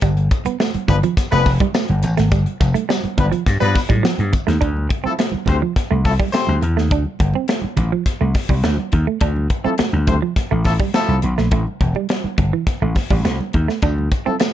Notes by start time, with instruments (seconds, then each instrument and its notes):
0.01 slap bass G1, clean electric guitar G3, kick, closed hi-hat, tambourine
0.17 closed hi-hat
0.31 muted clean electric guitar stroke, kick, closed hi-hat, tambourine
0.45 clean electric guitar B3, muted slap bass stroke, closed hi-hat, high conga
0.60 clean electric guitar A3, snare, tambourine, muted conga
0.74 muted slap bass stroke, closed hi-hat, high conga
0.88 slap bass G1, horn section F3 B3 D4 B4, muted clean electric guitar stroke, kick, closed hi-hat, high conga, low conga
1.03 clean electric guitar F3, closed hi-hat, low conga
1.17 muted slap bass stroke, kick, snare, closed hi-hat, tambourine, muted conga
1.32 slap bass F1, horn section F3 B3 D4 B4, clean electric guitar A3, closed hi-hat
1.46 muted clean electric guitar stroke, kick, snare, open hi-hat, tambourine, muted conga
1.60 clean electric guitar G3, kick, closed hi-hat, high conga
1.74 clean electric guitar A3, snare, tambourine, muted conga
1.88 slap bass G1, closed hi-hat, high conga
2.03 slap bass A1, muted clean electric guitar stroke, closed hi-hat, tambourine, muted conga, low conga
2.17 slap bass G#1, clean electric guitar A3, snare, closed hi-hat
2.32 slap bass G1, clean electric guitar G3, kick, closed hi-hat, tambourine, muted conga
2.46 closed hi-hat, high conga
2.60 slap bass F1, muted clean electric guitar stroke, kick, closed hi-hat, tambourine, muted conga
2.74 clean electric guitar A3, closed hi-hat, high conga
2.89 clean electric guitar G3, snare, tambourine, muted conga
3.04 muted slap bass stroke, closed hi-hat, high conga
3.18 slap bass G1, horn section F3 B3 D4 B4, muted clean electric guitar stroke, kick, closed hi-hat, muted conga, high conga, low conga
3.32 clean electric guitar F3, closed hi-hat, low conga
3.46 slap bass G2, kick, snare, closed hi-hat, tambourine, muted conga
3.60 slap bass G2, horn section F3 B3 D4 B4, clean electric guitar G3, closed hi-hat
3.75 muted clean electric guitar stroke, kick, snare, open hi-hat, tambourine, muted conga
3.89 slap bass A2, clean electric guitar G3, kick, closed hi-hat, high conga
4.03 clean electric guitar F3, snare, tambourine
4.18 slap bass G2, closed hi-hat, high conga
4.33 muted clean electric guitar stroke, kick, closed hi-hat, tambourine, muted conga, low conga
4.47 slap bass D#2, clean electric guitar A3, snare, closed hi-hat
4.61 slap bass D2, clean electric guitar D4, kick, closed hi-hat
4.77 high conga
4.89 muted clean electric guitar stroke, kick, closed hi-hat, muted conga
5.04 horn section F3 A3 E4 A4, clean electric guitar C4, muted slap bass stroke, high conga
5.18 clean electric guitar A3, snare, closed hi-hat, muted conga
5.32 muted slap bass stroke, high conga
5.46 slap bass D2, horn section A3 C4 G4 C5, muted clean electric guitar stroke, kick, closed hi-hat, muted conga, high conga, low conga
5.62 clean electric guitar F3
5.76 muted slap bass stroke, kick, snare, closed hi-hat
5.91 slap bass C2, clean electric guitar A3
6.04 horn section F3 A3 E4 A4, muted clean electric guitar stroke, kick, snare, open hi-hat
6.20 clean electric guitar G3, kick, high conga
6.32 horn section A3 C4 G4 C5, clean electric guitar A3, snare, closed hi-hat, muted conga
6.47 slap bass D2, high conga
6.61 slap bass E2, muted clean electric guitar stroke, closed hi-hat, low conga
6.77 slap bass D#2, clean electric guitar A3, snare
6.90 slap bass D2, clean electric guitar D4, kick, closed hi-hat, muted conga
7.05 high conga
7.19 slap bass G1, muted clean electric guitar stroke, kick, closed hi-hat, muted conga
7.33 clean electric guitar C4, high conga
7.48 clean electric guitar A3, snare, closed hi-hat
7.62 muted slap bass stroke, high conga
7.77 slap bass A1, muted clean electric guitar stroke, kick, closed hi-hat, muted conga, high conga, low conga
7.92 clean electric guitar F3
8.06 kick, snare, closed hi-hat
8.21 slap bass C2, clean electric guitar A3
8.34 muted clean electric guitar stroke, kick, snare, open hi-hat, muted conga
8.49 slap bass C2, clean electric guitar G3, kick, high conga
8.64 slap bass D2, clean electric guitar A3, snare, closed hi-hat, muted conga
8.78 high conga
8.92 slap bass D#2, muted clean electric guitar stroke, kick, closed hi-hat, low conga
9.07 clean electric guitar A3
9.21 slap bass D2, clean electric guitar D4, kick, closed hi-hat
9.36 high conga
9.50 muted clean electric guitar stroke, kick, closed hi-hat
9.64 horn section F3 A3 E4 A4, clean electric guitar C4, muted slap bass stroke, high conga
9.78 clean electric guitar A3, muted slap bass stroke, snare, closed hi-hat
9.93 slap bass D2, high conga
10.07 horn section A3 C4 G4 C5, muted clean electric guitar stroke, kick, closed hi-hat, muted conga, high conga, low conga
10.22 clean electric guitar F3
10.36 muted slap bass stroke, kick, snare, closed hi-hat, muted conga
10.51 slap bass A1, clean electric guitar A3
10.64 horn section F3 A3 E4 A4, muted clean electric guitar stroke, kick, snare, open hi-hat, muted conga
10.80 clean electric guitar G3, kick, high conga
10.94 horn section F3 A3 E4 A4, clean electric guitar A3, snare, closed hi-hat, muted conga
11.08 slap bass C2, high conga
11.22 slap bass B1, muted clean electric guitar stroke, closed hi-hat, muted conga, low conga
11.38 slap bass A#1, clean electric guitar A3, snare
11.51 slap bass A1, clean electric guitar A3, kick, closed hi-hat
11.67 high conga
11.81 slap bass E1, muted clean electric guitar stroke, kick, closed hi-hat
11.95 clean electric guitar G3, high conga
12.09 clean electric guitar G3, snare, closed hi-hat, muted conga
12.24 muted slap bass stroke, high conga
12.38 slap bass G1, muted clean electric guitar stroke, kick, closed hi-hat, high conga, low conga
12.53 clean electric guitar E3
12.67 kick, snare, closed hi-hat
12.82 slap bass A1, clean electric guitar A3
12.95 muted clean electric guitar stroke, kick, snare, open hi-hat, muted conga
13.11 slap bass A1, clean electric guitar G3, kick, high conga
13.25 slap bass C2, clean electric guitar A3, snare, closed hi-hat, muted conga
13.41 high conga
13.53 slap bass D#2, muted clean electric guitar stroke, kick, closed hi-hat, muted conga, low conga
13.68 clean electric guitar A3, snare
13.82 slap bass D2, clean electric guitar D4, kick, closed hi-hat, tambourine, muted conga
13.98 high conga
14.12 muted clean electric guitar stroke, kick, closed hi-hat, tambourine
14.25 horn section F3 A3 E4 A4, clean electric guitar C4, muted slap bass stroke, high conga
14.40 clean electric guitar A3, snare, closed hi-hat, tambourine, muted conga